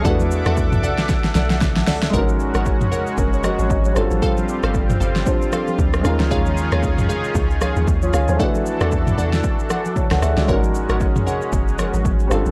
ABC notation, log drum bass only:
X:1
M:4/4
L:1/16
Q:"Swing 16ths" 1/4=115
K:Elyd
V:1 name="Log drum bass" clef=bass
E,,3 E,,3 B,,,4 B,,,4 C,,2 | G,,,3 G,,,3 z2 F,,,3 G,,, G,,,2 =G,,, ^G,,, | z3 =G,,,3 G,,,2 z4 =D,,2 ^D,, C,, | D,,3 D,,3 z2 C,,3 D,, D,,2 C,, D,, |
z3 E,,3 E,,2 z4 z C,, =D,, C,, | G,,,3 G,,,3 z2 F,,,3 G,,, G,,,2 =G,,, ^G,,, |]